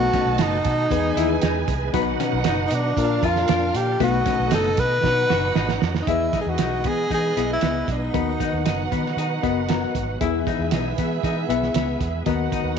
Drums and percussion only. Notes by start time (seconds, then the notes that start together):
0.13 kick, snare, closed hi-hat
0.38 snare, closed hi-hat
0.65 kick, closed hi-hat
0.91 kick, closed hi-hat
1.17 closed hi-hat
1.42 snare, closed hi-hat
1.68 kick, closed hi-hat
1.94 kick, closed hi-hat
2.20 snare, closed hi-hat
2.44 snare, closed hi-hat
2.71 closed hi-hat
2.97 kick, closed hi-hat
3.23 kick, closed hi-hat
3.36 snare
3.48 snare, closed hi-hat
3.75 closed hi-hat
4.00 kick, closed hi-hat
4.26 kick, snare, closed hi-hat
4.51 snare, closed hi-hat
4.77 kick, closed hi-hat
5.04 kick, snare
5.30 snare
5.55 snare
5.69 snare
5.82 snare
5.95 snare
6.07 kick, closed hi-hat
6.33 kick, snare, closed hi-hat
6.58 snare, closed hi-hat
6.84 kick, closed hi-hat
7.10 kick, closed hi-hat
7.37 closed hi-hat
7.61 snare, closed hi-hat
7.88 kick, closed hi-hat
8.14 kick, closed hi-hat
8.40 kick, snare, closed hi-hat
8.66 snare, closed hi-hat
8.92 kick, closed hi-hat
9.06 snare
9.18 closed hi-hat
9.43 kick, closed hi-hat
9.69 snare, closed hi-hat
9.95 kick, closed hi-hat
10.21 kick, closed hi-hat
10.47 kick, closed hi-hat
10.71 snare, closed hi-hat
10.98 kick, closed hi-hat
11.24 kick, closed hi-hat
11.50 closed hi-hat
11.63 snare
11.74 snare, closed hi-hat
12.01 kick, closed hi-hat
12.26 kick, closed hi-hat
12.52 kick, closed hi-hat